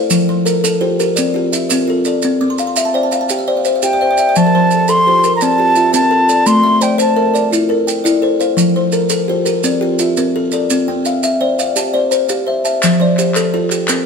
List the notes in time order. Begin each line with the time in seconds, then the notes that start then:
Already playing: A4 C5 F5
0.10 F3, maracas
0.29 F3
0.45 A4 A#4, maracas
0.64 A4, maracas
0.81 F4 G4 C5
1.00 G4 A#4, maracas
1.16 C4 D5, maracas
1.34 F4 G4
1.52 F4 E5, maracas
1.69 C4 A#4, maracas
1.88 F4 A4
2.05 A4 D5, maracas
2.22 C4, maracas
2.41 C4 D6
2.50 C6
2.58 F5 A#5, maracas
2.67 C6
2.76 E5 A#5, maracas
2.85 A5
2.94 C5 D5 G5
3.03 A5
3.11 F5 A#5, maracas
3.21 A5
3.29 G4 G5, maracas
3.39 E5
3.48 C5 D5 G5
3.57 F5
3.65 C5 E5, maracas
3.76 F5
3.82 G4 E5 G5, maracas
3.93 D5
4.01 C5 E5
4.11 D5
4.17 E5, maracas
4.29 D5
4.36 F3 C5 A5, maracas
4.47 A#4
4.55 F3 C5
4.71 A4, maracas
4.88 A4 C6, maracas
5.07 F4 G4 C5
5.24 G4 A#4, maracas
5.36 A#5
5.41 C4 D5 A5, maracas
5.58 F4 G4
5.75 F4 E5, maracas
5.93 C4 A#4 A5, maracas
6.11 F4 A4
6.29 A4 D5, maracas
6.46 A3 C6, maracas
6.63 A3 E5
6.81 C5 D5 G5, maracas
6.98 C5 A5, maracas
7.16 A4 A#4 E5
7.34 A#4 D5, maracas
7.51 E4 F4, maracas
7.69 A4 A#4
7.87 G5, maracas
8.04 E4 D5, maracas
8.22 A4 C5
8.40 C5 F5, maracas
8.57 F3, maracas
8.76 F3 C5
8.92 A4 A#4, maracas
9.10 A4, maracas
9.28 F4 G4 C5
9.45 G4 A#4, maracas
9.64 C4 D5, maracas
9.81 F4 G4
9.99 F4 E5, maracas
10.17 C4 A#4, maracas
10.36 F4 A4
10.52 A4 D5, maracas
10.70 C4, maracas
10.88 C4 G5
11.05 E5 F5, maracas
11.23 E5, maracas
11.41 C5 D5 G5
11.59 D5 F5, maracas
11.76 G4 A5, maracas
11.94 C5 D5
12.11 C5 A#5, maracas
12.29 G4 F5, maracas
12.47 C5 E5
12.65 E5 A5, maracas
12.83 F3, clap, maracas
13.00 F3 C5 D5
13.17 G4 C5, clap, maracas
13.34 A4, clap, maracas
13.54 F4 A4
13.70 G4, clap, maracas
13.88 C4 A#4, clap, maracas